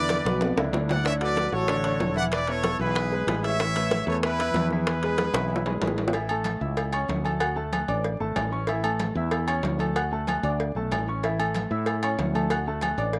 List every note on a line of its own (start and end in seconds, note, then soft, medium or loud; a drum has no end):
0.00 0.20 E2 medium
0.00 0.20 D3 medium
0.00 0.20 D4 medium
0.00 0.20 E4 medium
0.00 0.59 B4 medium
0.00 0.58 D5 loud
0.09 high bongo medium
0.09 high conga loud
0.09 high timbale medium
0.09 low timbale medium
0.25 0.55 B1 medium
0.25 0.52 B2 medium
0.25 0.52 B3 medium
0.25 0.52 B4 medium
0.25 high bongo medium
0.25 high conga medium
0.41 high bongo medium
0.41 high conga loud
0.41 high timbale medium
0.57 0.72 C#2 medium
0.57 0.71 D3 medium
0.57 0.71 D4 medium
0.57 0.71 E4 medium
0.57 high bongo loud
0.57 high timbale loud
0.73 1.47 D2 medium
0.73 1.00 D3 medium
0.73 1.00 D4 medium
0.73 1.00 E4 medium
0.73 low bongo medium
0.73 low timbale medium
0.89 1.05 D5 medium
0.89 1.05 F#5 medium
0.89 low bongo loud
0.89 low conga medium
0.89 low timbale medium
1.05 1.18 D3 medium
1.05 1.19 D4 medium
1.05 1.14 C#5 medium
1.05 1.19 D5 medium
1.05 1.13 E5 loud
1.05 high bongo medium
1.05 high conga soft
1.05 high timbale medium
1.21 1.47 F#3 medium
1.21 1.47 F#4 medium
1.21 1.48 A4 medium
1.21 1.52 B4 medium
1.21 1.51 D5 loud
1.21 high conga soft
1.21 high timbale medium
1.36 high bongo medium
1.36 high conga loud
1.36 high timbale medium
1.36 low timbale medium
1.52 1.97 A1 medium
1.52 1.65 F#3 medium
1.52 1.66 F#4 medium
1.52 1.66 A4 medium
1.52 2.13 A4 medium
1.52 2.12 C#5 loud
1.52 high bongo soft
1.68 1.81 D3 medium
1.68 1.82 D4 medium
1.68 1.82 D5 medium
1.68 high bongo medium
1.68 high conga soft
1.68 high timbale medium
1.84 2.10 D3 medium
1.84 2.11 D4 medium
1.84 2.11 C#5 medium
1.84 high bongo soft
1.84 high conga soft
1.84 high timbale medium
2.00 2.74 E1 medium
2.00 high bongo soft
2.00 low bongo medium
2.00 high conga medium
2.00 low timbale medium
2.16 2.42 E3 medium
2.16 2.42 E4 medium
2.16 2.24 D5 medium
2.16 2.43 E5 medium
2.16 2.24 F#5 loud
2.16 high bongo soft
2.16 high conga medium
2.32 2.47 B4 medium
2.32 2.47 D5 medium
2.32 high bongo medium
2.32 high conga soft
2.32 high timbale medium
2.47 2.74 B3 medium
2.47 2.74 E4 medium
2.47 2.80 A4 medium
2.47 2.74 B4 medium
2.47 2.80 C#5 loud
2.47 high conga soft
2.47 high timbale medium
2.64 high bongo medium
2.64 high conga loud
2.64 high timbale medium
2.64 low timbale medium
2.79 3.24 B1 medium
2.79 3.06 E3 medium
2.79 3.06 E4 medium
2.79 3.40 G#4 medium
2.79 3.40 B4 loud
2.79 3.07 E5 medium
2.79 high bongo soft
2.95 high bongo medium
2.95 high conga soft
2.95 high timbale medium
3.12 3.25 G#3 medium
3.12 3.26 G#4 medium
3.12 3.26 B4 medium
3.12 high bongo soft
3.12 high conga soft
3.27 4.01 A1 medium
3.27 3.54 G#3 medium
3.27 3.55 G#4 medium
3.27 3.55 B4 medium
3.27 high bongo soft
3.27 low bongo medium
3.27 high conga soft
3.27 high timbale loud
3.27 low timbale medium
3.44 4.07 C#5 medium
3.44 4.07 E5 loud
3.44 high bongo soft
3.44 high conga soft
3.44 high timbale medium
3.60 3.73 E3 medium
3.60 3.73 E4 medium
3.60 3.73 E5 medium
3.60 high bongo medium
3.60 high conga soft
3.60 high timbale medium
3.75 4.02 A3 medium
3.75 4.02 A4 medium
3.75 4.02 B4 medium
3.75 high conga soft
3.75 high timbale medium
3.91 high bongo medium
3.91 high conga medium
3.91 high timbale medium
3.91 low timbale medium
4.07 4.51 E2 loud
4.07 4.20 A3 medium
4.07 4.21 A4 medium
4.07 4.16 A4 medium
4.07 4.21 B4 medium
4.07 4.15 C#5 medium
4.07 high bongo soft
4.23 4.37 E3 medium
4.23 4.37 E4 medium
4.23 4.69 E4 medium
4.23 4.69 B4 loud
4.23 4.37 E5 medium
4.23 high bongo medium
4.23 high conga soft
4.23 high timbale medium
4.39 4.66 E3 medium
4.39 4.66 E4 loud
4.39 4.66 E5 medium
4.39 high bongo soft
4.39 high conga soft
4.39 high timbale loud
4.54 5.28 E2 medium
4.54 high bongo soft
4.54 low bongo medium
4.54 high conga medium
4.54 low timbale medium
4.70 4.98 E3 medium
4.70 4.98 E4 medium
4.70 5.80 G#4 medium
4.70 4.98 E5 medium
4.70 high bongo soft
4.70 high conga medium
4.75 5.80 B4 medium
4.87 high bongo medium
4.87 high timbale medium
5.03 5.29 G#3 medium
5.03 5.29 G#4 medium
5.03 5.30 B4 medium
5.03 high conga soft
5.03 high timbale medium
5.18 high bongo medium
5.18 high conga loud
5.18 high timbale medium
5.18 low timbale medium
5.33 5.78 B1 loud
5.33 5.61 E3 medium
5.33 5.61 E4 medium
5.33 5.61 E5 medium
5.33 high bongo loud
5.33 high timbale medium
5.50 high conga soft
5.56 low bongo loud
5.66 5.80 G#3 medium
5.66 5.80 G#4 medium
5.66 5.80 B4 medium
5.66 high conga soft
5.66 low timbale medium
5.81 6.56 A1 medium
5.81 6.08 G#3 medium
5.81 6.09 G#4 medium
5.81 6.08 B4 medium
5.81 low timbale loud
5.87 low bongo medium
5.98 high conga soft
5.98 low timbale medium
6.08 low bongo loud
6.13 6.27 E3 medium
6.13 6.27 E4 medium
6.13 6.27 E5 medium
6.13 cowbell loud
6.13 high conga soft
6.13 low agogo medium
6.29 6.56 A3 medium
6.29 6.57 A4 medium
6.29 6.56 A5 medium
6.29 high conga soft
6.29 low agogo loud
6.44 cowbell medium
6.44 high conga loud
6.44 low timbale medium
6.44 low agogo medium
6.61 7.06 C#2 medium
6.61 6.87 E4 medium
6.61 6.87 E5 medium
6.61 6.88 E6 medium
6.77 cowbell loud
6.77 high conga soft
6.77 low agogo medium
6.93 7.19 C#4 medium
6.93 7.20 C#5 medium
6.93 7.20 C#6 medium
6.93 cowbell medium
6.93 high conga soft
6.93 low agogo loud
7.08 7.83 D2 medium
7.08 cowbell medium
7.08 high conga medium
7.08 low timbale medium
7.24 7.38 A3 medium
7.24 7.38 A4 medium
7.24 7.38 A5 medium
7.24 high conga medium
7.24 low agogo medium
7.40 7.54 F#4 medium
7.40 7.54 F#5 medium
7.40 7.54 F#6 medium
7.40 cowbell loud
7.40 high conga soft
7.40 low agogo loud
7.56 7.82 A3 medium
7.56 7.82 A4 medium
7.56 7.83 A5 medium
7.56 high conga soft
7.73 cowbell medium
7.73 high conga loud
7.73 low timbale medium
7.73 low agogo loud
7.88 8.18 A1 medium
7.88 8.15 D4 medium
7.88 8.15 D5 medium
7.88 8.15 D6 medium
7.88 low agogo medium
8.04 cowbell loud
8.04 high conga soft
8.20 8.35 G#1 medium
8.20 8.47 A3 medium
8.20 8.47 A4 medium
8.20 8.47 A5 medium
8.20 high conga soft
8.36 9.10 A1 medium
8.36 cowbell medium
8.36 high conga soft
8.36 low timbale medium
8.36 low agogo loud
8.52 8.65 C#4 medium
8.52 8.66 C#5 medium
8.52 8.66 C#6 medium
8.52 high conga soft
8.67 8.81 E3 medium
8.67 8.81 E4 medium
8.67 8.82 E5 medium
8.67 cowbell loud
8.67 high conga soft
8.67 low agogo medium
8.84 9.10 A3 medium
8.84 9.10 A4 medium
8.84 9.11 A5 medium
8.84 high conga soft
8.84 low agogo loud
8.99 cowbell medium
8.99 high conga loud
8.99 low timbale medium
8.99 low agogo medium
9.15 9.60 E2 loud
9.15 9.42 E4 medium
9.15 9.43 E5 medium
9.15 9.43 E6 medium
9.31 cowbell loud
9.31 high conga soft
9.31 low agogo medium
9.48 9.74 C#4 medium
9.48 9.74 C#5 medium
9.48 9.74 C#6 medium
9.48 cowbell medium
9.48 high conga soft
9.48 low agogo loud
9.63 10.38 D2 medium
9.63 cowbell medium
9.63 high conga medium
9.63 low timbale medium
9.79 9.93 A3 medium
9.79 9.93 A4 medium
9.79 9.93 A5 medium
9.79 high conga medium
9.79 low agogo medium
9.96 10.09 F#4 medium
9.96 10.09 F#5 medium
9.96 10.09 F#6 medium
9.96 cowbell loud
9.96 low agogo loud
10.12 10.38 A3 medium
10.12 10.38 A4 medium
10.12 10.38 A5 medium
10.12 high conga soft
10.27 cowbell medium
10.27 high conga loud
10.27 low timbale medium
10.27 low agogo loud
10.43 10.73 D2 medium
10.43 10.70 D4 medium
10.43 10.70 D5 medium
10.43 10.70 D6 medium
10.43 high conga soft
10.43 low agogo medium
10.60 cowbell loud
10.60 high conga soft
10.75 10.90 B1 medium
10.75 11.02 A3 medium
10.75 11.02 A4 medium
10.75 11.02 A5 medium
10.75 high conga soft
10.91 11.65 A1 medium
10.91 cowbell medium
10.91 high conga soft
10.91 low timbale medium
10.91 low agogo loud
11.08 11.21 C#4 medium
11.08 11.21 C#5 medium
11.08 11.21 C#6 medium
11.08 high conga soft
11.23 11.37 E3 medium
11.23 11.37 E4 medium
11.23 11.37 E5 medium
11.23 cowbell loud
11.23 high conga soft
11.23 low agogo medium
11.39 11.65 A3 medium
11.39 11.65 A4 medium
11.39 11.65 A5 medium
11.39 high conga soft
11.39 low agogo loud
11.54 cowbell medium
11.54 high conga loud
11.54 low timbale medium
11.54 low agogo medium
11.71 12.15 A2 loud
11.71 11.97 E4 medium
11.71 11.97 E5 medium
11.71 11.97 E6 medium
11.86 cowbell loud
11.86 high conga soft
11.86 low agogo medium
12.03 12.29 C#4 medium
12.03 12.29 C#5 medium
12.03 12.30 C#6 medium
12.03 cowbell medium
12.03 high conga soft
12.03 low agogo loud
12.19 12.93 D2 medium
12.19 cowbell medium
12.19 high conga medium
12.19 low timbale medium
12.34 12.48 A3 medium
12.34 12.48 A4 medium
12.34 12.48 A5 medium
12.34 high conga medium
12.34 low agogo medium
12.50 12.64 F#4 medium
12.50 12.64 F#5 medium
12.50 12.64 F#6 medium
12.50 cowbell loud
12.50 high conga soft
12.50 low agogo loud
12.67 12.93 A3 medium
12.67 12.93 A4 medium
12.67 12.93 A5 medium
12.67 high conga soft
12.81 cowbell medium
12.81 high conga loud
12.81 low timbale medium
12.81 low agogo loud
12.98 13.19 A1 loud
12.98 13.19 D4 medium
12.98 13.19 D5 medium
12.98 13.19 D6 medium
12.98 low agogo medium
13.13 cowbell loud
13.13 high conga soft